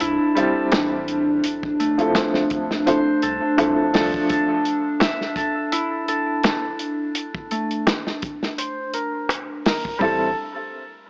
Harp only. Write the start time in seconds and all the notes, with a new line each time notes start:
Already playing: A4 E5
0.01 E4
0.37 A4
1.80 A3
2.87 C5
3.23 A4
3.94 A4
4.30 A4
5.01 E5
5.37 A4
5.72 E4
6.08 A4
7.51 A3
8.58 C5
8.94 A#4
9.65 A#4
10.01 A4